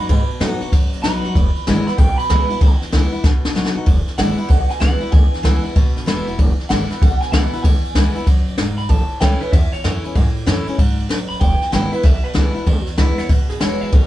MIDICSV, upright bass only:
0, 0, Header, 1, 3, 480
1, 0, Start_track
1, 0, Key_signature, 4, "major"
1, 0, Tempo, 314465
1, 142, Time_signature, 4, 2, 24, 8
1, 21473, End_track
2, 0, Start_track
2, 0, Title_t, "Upright bass"
2, 0, Program_c, 0, 32
2, 145, Note_on_c, 0, 44, 95
2, 355, Note_off_c, 0, 44, 0
2, 616, Note_on_c, 0, 45, 93
2, 829, Note_off_c, 0, 45, 0
2, 1107, Note_on_c, 0, 44, 98
2, 1317, Note_off_c, 0, 44, 0
2, 1423, Note_on_c, 0, 39, 85
2, 1536, Note_off_c, 0, 39, 0
2, 1580, Note_on_c, 0, 35, 102
2, 1792, Note_off_c, 0, 35, 0
2, 2066, Note_on_c, 0, 28, 94
2, 2276, Note_off_c, 0, 28, 0
2, 2554, Note_on_c, 0, 32, 96
2, 2762, Note_off_c, 0, 32, 0
2, 3032, Note_on_c, 0, 35, 99
2, 3241, Note_off_c, 0, 35, 0
2, 3511, Note_on_c, 0, 37, 94
2, 3720, Note_off_c, 0, 37, 0
2, 3988, Note_on_c, 0, 37, 95
2, 4198, Note_off_c, 0, 37, 0
2, 4470, Note_on_c, 0, 37, 94
2, 4679, Note_off_c, 0, 37, 0
2, 4946, Note_on_c, 0, 35, 97
2, 5157, Note_off_c, 0, 35, 0
2, 5245, Note_on_c, 0, 39, 82
2, 5365, Note_off_c, 0, 39, 0
2, 5415, Note_on_c, 0, 35, 96
2, 5630, Note_off_c, 0, 35, 0
2, 5724, Note_on_c, 0, 35, 87
2, 5844, Note_off_c, 0, 35, 0
2, 5911, Note_on_c, 0, 28, 92
2, 6120, Note_off_c, 0, 28, 0
2, 6383, Note_on_c, 0, 32, 94
2, 6595, Note_off_c, 0, 32, 0
2, 6873, Note_on_c, 0, 35, 95
2, 7082, Note_off_c, 0, 35, 0
2, 7344, Note_on_c, 0, 37, 92
2, 7555, Note_off_c, 0, 37, 0
2, 7837, Note_on_c, 0, 37, 98
2, 8044, Note_off_c, 0, 37, 0
2, 8302, Note_on_c, 0, 37, 90
2, 8514, Note_off_c, 0, 37, 0
2, 8789, Note_on_c, 0, 37, 97
2, 8999, Note_off_c, 0, 37, 0
2, 9092, Note_on_c, 0, 32, 84
2, 9209, Note_off_c, 0, 32, 0
2, 9266, Note_on_c, 0, 28, 98
2, 9476, Note_off_c, 0, 28, 0
2, 9569, Note_on_c, 0, 28, 89
2, 9687, Note_off_c, 0, 28, 0
2, 9751, Note_on_c, 0, 28, 97
2, 9960, Note_off_c, 0, 28, 0
2, 10234, Note_on_c, 0, 32, 88
2, 10442, Note_off_c, 0, 32, 0
2, 10713, Note_on_c, 0, 35, 97
2, 10921, Note_off_c, 0, 35, 0
2, 11175, Note_on_c, 0, 37, 103
2, 11389, Note_off_c, 0, 37, 0
2, 11664, Note_on_c, 0, 37, 92
2, 11875, Note_off_c, 0, 37, 0
2, 12127, Note_on_c, 0, 37, 93
2, 12344, Note_off_c, 0, 37, 0
2, 12619, Note_on_c, 0, 37, 103
2, 12832, Note_off_c, 0, 37, 0
2, 12919, Note_on_c, 0, 32, 91
2, 13040, Note_off_c, 0, 32, 0
2, 13089, Note_on_c, 0, 28, 88
2, 13304, Note_off_c, 0, 28, 0
2, 13399, Note_on_c, 0, 28, 85
2, 13520, Note_off_c, 0, 28, 0
2, 13586, Note_on_c, 0, 33, 91
2, 13795, Note_off_c, 0, 33, 0
2, 14066, Note_on_c, 0, 37, 90
2, 14275, Note_off_c, 0, 37, 0
2, 14548, Note_on_c, 0, 40, 95
2, 14756, Note_off_c, 0, 40, 0
2, 15024, Note_on_c, 0, 42, 98
2, 15234, Note_off_c, 0, 42, 0
2, 15504, Note_on_c, 0, 42, 97
2, 15714, Note_off_c, 0, 42, 0
2, 15979, Note_on_c, 0, 42, 91
2, 16190, Note_off_c, 0, 42, 0
2, 16465, Note_on_c, 0, 42, 91
2, 16674, Note_off_c, 0, 42, 0
2, 16764, Note_on_c, 0, 37, 88
2, 16882, Note_off_c, 0, 37, 0
2, 16924, Note_on_c, 0, 33, 97
2, 17140, Note_off_c, 0, 33, 0
2, 17251, Note_on_c, 0, 33, 92
2, 17366, Note_off_c, 0, 33, 0
2, 17420, Note_on_c, 0, 28, 94
2, 17631, Note_off_c, 0, 28, 0
2, 17899, Note_on_c, 0, 32, 90
2, 18110, Note_off_c, 0, 32, 0
2, 18376, Note_on_c, 0, 35, 94
2, 18588, Note_off_c, 0, 35, 0
2, 18862, Note_on_c, 0, 37, 97
2, 19071, Note_off_c, 0, 37, 0
2, 19334, Note_on_c, 0, 37, 98
2, 19546, Note_off_c, 0, 37, 0
2, 19809, Note_on_c, 0, 37, 89
2, 20023, Note_off_c, 0, 37, 0
2, 20296, Note_on_c, 0, 37, 100
2, 20508, Note_off_c, 0, 37, 0
2, 20597, Note_on_c, 0, 32, 84
2, 20717, Note_off_c, 0, 32, 0
2, 20778, Note_on_c, 0, 28, 98
2, 20989, Note_off_c, 0, 28, 0
2, 21085, Note_on_c, 0, 34, 88
2, 21202, Note_off_c, 0, 34, 0
2, 21260, Note_on_c, 0, 35, 94
2, 21470, Note_off_c, 0, 35, 0
2, 21473, End_track
3, 0, Start_track
3, 0, Title_t, "Muted upright bass strokes"
3, 449, Note_on_c, 9, 29, 73
3, 602, Note_off_c, 9, 29, 0
3, 935, Note_on_c, 9, 29, 71
3, 1088, Note_off_c, 9, 29, 0
3, 2385, Note_on_c, 9, 29, 74
3, 2538, Note_off_c, 9, 29, 0
3, 2856, Note_on_c, 9, 29, 76
3, 3009, Note_off_c, 9, 29, 0
3, 4304, Note_on_c, 9, 29, 73
3, 4456, Note_off_c, 9, 29, 0
3, 4785, Note_on_c, 9, 29, 69
3, 4938, Note_off_c, 9, 29, 0
3, 6212, Note_on_c, 9, 29, 71
3, 6365, Note_off_c, 9, 29, 0
3, 6699, Note_on_c, 9, 29, 63
3, 6851, Note_off_c, 9, 29, 0
3, 7168, Note_on_c, 9, 29, 66
3, 7321, Note_off_c, 9, 29, 0
3, 8139, Note_on_c, 9, 29, 70
3, 8291, Note_off_c, 9, 29, 0
3, 8617, Note_on_c, 9, 29, 65
3, 8769, Note_off_c, 9, 29, 0
3, 10065, Note_on_c, 9, 29, 76
3, 10218, Note_off_c, 9, 29, 0
3, 10538, Note_on_c, 9, 29, 70
3, 10690, Note_off_c, 9, 29, 0
3, 11490, Note_on_c, 9, 29, 73
3, 11643, Note_off_c, 9, 29, 0
3, 11966, Note_on_c, 9, 29, 75
3, 12119, Note_off_c, 9, 29, 0
3, 13898, Note_on_c, 9, 29, 73
3, 14051, Note_off_c, 9, 29, 0
3, 14380, Note_on_c, 9, 29, 67
3, 14532, Note_off_c, 9, 29, 0
3, 14861, Note_on_c, 9, 29, 68
3, 15014, Note_off_c, 9, 29, 0
3, 15334, Note_on_c, 9, 29, 70
3, 15487, Note_off_c, 9, 29, 0
3, 15811, Note_on_c, 9, 29, 78
3, 15964, Note_off_c, 9, 29, 0
3, 16284, Note_on_c, 9, 29, 75
3, 16437, Note_off_c, 9, 29, 0
3, 17721, Note_on_c, 9, 29, 77
3, 17874, Note_off_c, 9, 29, 0
3, 18201, Note_on_c, 9, 29, 71
3, 18353, Note_off_c, 9, 29, 0
3, 18695, Note_on_c, 9, 29, 71
3, 18847, Note_off_c, 9, 29, 0
3, 19166, Note_on_c, 9, 29, 76
3, 19318, Note_off_c, 9, 29, 0
3, 20127, Note_on_c, 9, 29, 69
3, 20280, Note_off_c, 9, 29, 0
3, 21473, End_track
0, 0, End_of_file